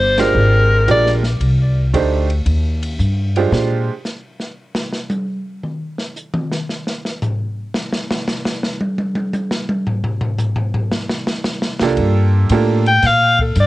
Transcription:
Already playing: upright bass G1, clarinet C5
0.18 upright piano G#3 D4 F4 G4 C5, clarinet A#4, snare, ride
0.35 upright bass G#1, kick
0.88 upright bass A#1, upright piano G#3 D4 F4 G4 A#4, clarinet D5, kick, hi-hat pedal, ride
1.06 snare
1.23 snare
1.40 upright bass C2, kick, ride
1.94 upright bass D2, upright piano A3 D4 D#4 G4 C5, kick, hi-hat pedal, ride
2.30 ride
2.46 upright bass D#2, kick, ride
2.83 ride
2.99 upright bass G2, kick, hi-hat pedal
3.36 upright piano G#3 D4 F4 G4 C5, ride
3.51 upright bass A#2, snare
4.05 snare, hi-hat pedal
4.40 snare
4.75 snare
4.93 snare
5.10 hi-hat pedal, high tom
5.63 mid tom
5.98 snare
6.16 hi-hat pedal
6.34 mid tom
6.51 snare
6.69 snare
6.87 snare
7.05 snare
7.22 floor tom, hi-hat pedal
7.74 snare
7.92 snare
8.11 snare
8.28 snare, hi-hat pedal
8.45 snare
8.63 snare
8.81 high tom
8.98 high tom
9.15 high tom
9.33 hi-hat pedal, high tom
9.51 snare
9.69 high tom
9.87 floor tom
10.04 floor tom
10.21 floor tom
10.38 floor tom, hi-hat pedal
10.56 floor tom
10.74 floor tom
10.92 snare
11.09 snare
11.27 snare
11.44 snare, hi-hat pedal
11.62 snare
11.79 upright bass C2, upright piano A#3 D4 F4 G4 A4, snare
11.97 upright bass G2, kick, ride
12.49 upright bass A2, upright piano A#3 D4 F4 G4 A4, kick, hi-hat pedal, ride
12.86 clarinet G5, ride
13.02 upright bass A#2, kick, snare, ride
13.06 clarinet F5
13.39 clarinet A4, kick
13.55 upright bass G2, kick, hi-hat pedal, ride
13.60 clarinet D5

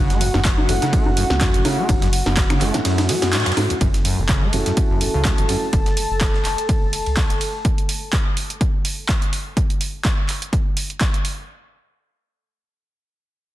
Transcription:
Already playing: analog synth bass F#1, acid bass C#3, analog synth pad F#4 F#5
0.10 acid bass A3, snare, closed hi-hat
0.21 acid bass E2, open hi-hat, ride
0.34 analog synth bass F#1, acid bass F#2, snare, high conga
0.45 kick, snare, clap, closed hi-hat, ride
0.58 acid bass F#2, high conga
0.69 acid bass F#1, analog synth bass F#1, grand piano A3 C#4 E4 F#4, open hi-hat, ride
0.82 acid bass C#3, snare, closed hi-hat, high conga
0.93 acid bass A3, kick, closed hi-hat, ride
1.06 analog synth bass F#1, acid bass E2, high conga
1.17 acid bass F#2, open hi-hat, ride
1.30 analog synth bass C#2, snare
1.41 acid bass F#2, kick, snare, clap, closed hi-hat, ride, high conga
1.54 acid bass F#1, analog synth bass F#1, closed hi-hat
1.65 acid bass C#3, grand piano A3 C#4 E4 F#4, open hi-hat, ride, high conga
1.78 acid bass A3
1.89 analog synth bass F#1, acid bass E2, kick, closed hi-hat, ride, high conga
2.02 acid bass F#2, snare, closed hi-hat
2.13 open hi-hat, ride
2.26 analog synth bass F#1, acid bass F#2, snare, high conga
2.37 acid bass F#1, kick, snare, clap, closed hi-hat, ride
2.50 acid bass C#3, finger snap, snare, closed hi-hat, high conga
2.61 analog synth bass F#1, grand piano A3 C#4 E4 F#4, acid bass A3, clap, open hi-hat, ride
2.74 acid bass E2, snare, closed hi-hat, high conga
2.85 acid bass F#2, snare, closed hi-hat, ride
2.98 snare, closed hi-hat, ride, high conga
3.09 acid bass F#3, grand piano A3 C#4 E4 F#4, snare, open hi-hat, ride
3.22 acid bass F#2, snare, closed hi-hat, ride
3.33 acid bass A2, snare, clap, closed hi-hat, ride, high conga
3.40 snare, ride
3.46 acid bass F#2, finger snap, snare, closed hi-hat, ride
3.52 snare, ride
3.57 acid bass G#2, grand piano A3 C#4 E4 F#4, snare, open hi-hat, ride, high conga
3.70 acid bass E2, closed hi-hat
3.81 analog synth bass F#1, acid bass F#2, analog synth pad A4 A5, kick, closed hi-hat, ride
3.94 snare, closed hi-hat
4.05 acid bass F#2, open hi-hat, ride
4.18 acid bass F#1, analog synth bass F#1
4.29 acid bass C#3, kick, snare, clap, closed hi-hat, ride
4.42 acid bass A3
4.53 analog synth bass F#1, acid bass E2, grand piano A3 C#4 E4 F#4, open hi-hat, ride
4.66 acid bass F#2, snare, closed hi-hat
4.77 kick, closed hi-hat, ride
4.90 analog synth bass F#1, acid bass F#2
5.01 acid bass F#1, open hi-hat, ride
5.14 analog synth bass C#2, acid bass C#3
5.25 acid bass A3, kick, snare, clap, closed hi-hat, ride
5.38 analog synth bass F#1, acid bass E2, closed hi-hat
5.49 acid bass F#2, grand piano A3 C#4 E4 F#4, open hi-hat, ride
5.73 analog synth bass F#1, kick, closed hi-hat, ride
5.86 snare, closed hi-hat
5.97 open hi-hat, ride
6.10 analog synth bass F#1
6.21 kick, snare, clap, closed hi-hat, ride
6.34 snare
6.45 analog synth bass F#1, clap, open hi-hat, ride
6.58 closed hi-hat
6.69 kick, closed hi-hat, ride
6.82 analog synth bass F#1
6.93 open hi-hat, ride
7.06 analog synth bass C#2, ride
7.17 kick, snare, clap, closed hi-hat, ride
7.30 analog synth bass F#1, closed hi-hat, ride
7.41 open hi-hat, ride
7.65 kick, closed hi-hat
7.78 closed hi-hat
7.89 open hi-hat
8.13 kick, clap, closed hi-hat
8.37 open hi-hat
8.50 closed hi-hat
8.61 kick, closed hi-hat
8.85 open hi-hat
9.09 kick, clap, closed hi-hat
9.22 closed hi-hat
9.33 open hi-hat
9.57 kick, closed hi-hat
9.70 closed hi-hat
9.81 open hi-hat
10.05 kick, clap, closed hi-hat
10.29 clap, open hi-hat
10.42 closed hi-hat
10.53 kick, closed hi-hat
10.77 open hi-hat
10.90 closed hi-hat
11.01 kick, clap, closed hi-hat
11.14 closed hi-hat
11.25 open hi-hat

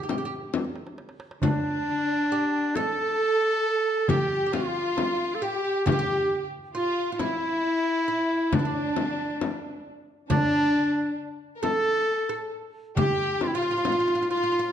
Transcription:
Already playing: violin section G4, clarinet G4
0.03 oud G4
0.09 oud G4, darbuka tek, frame drum
0.18 oud G4
0.25 oud G4
0.53 darbuka tek, frame drum
0.65 darbuka ka
0.76 darbuka tek
0.87 darbuka ka
0.98 darbuka tek
1.09 darbuka ka
1.20 darbuka tek
1.31 darbuka ka
1.42 clarinet D4, violin section D4, oud D4, darbuka dum, frame drum
2.31 oud G4, darbuka ka
2.75 clarinet A4, oud A4, violin section A4, darbuka tek, frame drum
4.08 clarinet G4, oud G4, violin section G4, darbuka dum, frame drum
4.46 oud G4
4.52 oud F4, clarinet F4, violin section F4, darbuka tek, frame drum
4.97 darbuka tek, frame drum
5.35 clarinet A4
5.42 oud G4, clarinet G4, violin section G4, darbuka ka
5.86 oud G4, violin section G4, clarinet G4, darbuka dum, frame drum
5.92 oud F4
5.99 oud G4
6.75 oud F4, violin section F4, clarinet F4
7.12 oud F4, clarinet F4
7.19 oud E4, clarinet E4, violin section E4, darbuka tek, frame drum
8.08 oud E4
8.52 oud D4, violin section D4, clarinet D4, darbuka dum, frame drum
8.59 oud E4
8.65 oud D4
8.97 darbuka tek, frame drum
9.41 darbuka tek, frame drum
9.86 darbuka ka
10.30 oud D4, clarinet D4, violin section D4, darbuka dum, frame drum
11.19 darbuka ka
11.56 violin section A#4
11.63 oud A4, violin section A4, clarinet A4, darbuka tek, frame drum
12.29 oud A4
12.96 oud G4, violin section G4, clarinet G4, darbuka dum, frame drum
13.41 clarinet F4, darbuka tek, frame drum
13.48 clarinet E4
13.55 oud F4, violin section F4, clarinet F4
13.62 oud F4
13.71 oud F4
13.77 oud F4
13.85 oud F4, darbuka tek, frame drum
13.92 oud F4
14.00 oud F4
14.08 oud F4
14.15 oud F4
14.22 oud F4
14.30 violin section F4, oud F4, clarinet F4, darbuka ka
14.37 oud F4
14.44 oud F4
14.52 oud F4
14.59 oud F4

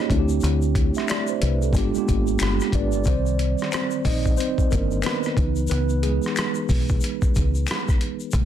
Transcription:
Already playing: tine electric piano A#3 C#4 D#4 F4 G4 G#4 C5 C#5 D#5
0.08 fingered electric bass D2, tine electric piano A3 C4 D4 E4 F#4, kick, closed hi-hat
0.19 tine electric piano G4
0.29 shaker
0.41 fingered electric bass D2, closed hi-hat, shaker
0.62 shaker
0.75 kick, closed hi-hat
0.95 tine electric piano E5, cross-stick, shaker
1.08 tine electric piano D5, finger snap, cross-stick, closed hi-hat, shaker
1.27 tine electric piano C5, shaker
1.42 fingered electric bass C2, tine electric piano B4, closed hi-hat
1.62 tine electric piano A4, shaker
1.73 fingered electric bass G1, tine electric piano G#3 B3 D4 F4, kick, closed hi-hat, shaker
1.78 tine electric piano G4
1.94 tine electric piano G#3 A#3 D4 F4, muted fingered electric bass stroke, shaker
1.98 tine electric piano B3 G4
2.08 fingered electric bass G#1, kick, closed hi-hat, shaker
2.27 shaker
2.39 fingered electric bass G1, finger snap, cross-stick, closed hi-hat, shaker
2.60 tine electric piano G4, cross-stick, shaker
2.72 fingered electric bass G#1, tine electric piano D4 B4 D5, kick, closed hi-hat
2.92 fingered electric bass G1, tine electric piano D5, shaker
3.04 fingered electric bass C2, tine electric piano D#3 G3, kick, closed hi-hat, shaker
3.08 tine electric piano C4 C5 D5
3.26 shaker
3.39 closed hi-hat
3.58 cross-stick, shaker
3.72 tine electric piano C4 C5, finger snap, cross-stick, closed hi-hat, shaker
3.91 shaker
4.05 fingered electric bass A#1, tine electric piano D#4 D#5, kick, open hi-hat, shaker
4.26 kick, shaker
4.37 tine electric piano C4 C5, closed hi-hat, shaker
4.58 kick, shaker
4.71 fingered electric bass G1, tine electric piano D#3 A#3 D4 A#4, kick, closed hi-hat, shaker
4.91 shaker
5.02 tine electric piano B3 B4, finger snap, closed hi-hat, shaker
5.06 cross-stick
5.23 cross-stick, shaker
5.37 fingered electric bass C#2, tine electric piano E3 B3 D#4, kick, closed hi-hat
5.56 shaker
5.67 fingered electric bass C#2, tine electric piano B4, closed hi-hat, shaker
5.72 tine electric piano B3
5.89 shaker
6.03 tine electric piano G#3 G#4, closed hi-hat
6.22 cross-stick, shaker
6.36 finger snap, cross-stick, closed hi-hat, shaker
6.54 shaker
6.69 fingered electric bass B1, kick, open hi-hat, shaker
6.89 kick, shaker
7.01 closed hi-hat, shaker
7.22 muted fingered electric bass stroke, kick, shaker
7.35 fingered electric bass C#2, kick, closed hi-hat, shaker
7.55 shaker
7.67 finger snap, closed hi-hat, shaker
7.71 cross-stick
7.88 kick, cross-stick, shaker
8.01 closed hi-hat
8.20 shaker
8.31 fingered electric bass A#1, tine electric piano C#3 G#3 A#3, kick, closed hi-hat, shaker

